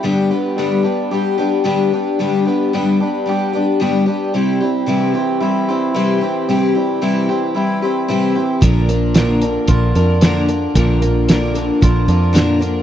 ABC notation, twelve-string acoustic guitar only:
X:1
M:4/4
L:1/8
Q:1/4=112
K:Clyd
V:1 name="Twelve-string acoustic guitar"
[G,,D,G,B,DG] [G,B,DG] [G,,D,G,B,DG] [G,B,DG] [G,B,DG] [G,B,DG] [G,,D,G,B,DG] [G,B,DG] | [G,,D,G,B,DG] [G,B,DG] [G,,D,G,B,DG] [G,B,DG] [G,B,DG] [G,B,DG] [G,,D,G,B,DG] [G,B,DG] | [C,G,CEG] [CEG] [C,G,CEG] [CEG] [G,CEG] [CEG] [C,G,CEG] [CEG] | [C,G,CEG] [CEG] [C,G,CEG] [CEG] [G,CEG] [CEG] [C,G,CEG] [CEG] |
[_B,,D,=F,_B,D_B] [F,B,DB] [B,,D,F,B,DB] [F,B,DB] [F,B,DB] [F,B,DB] [B,,D,F,B,DB] [F,B,DB] | [_B,,D,=F,_B,D_B] [F,B,DB] [B,,D,F,B,DB] [F,B,DB] [F,B,DB] [F,B,DB] [B,,D,F,B,DB] [F,B,DB] |]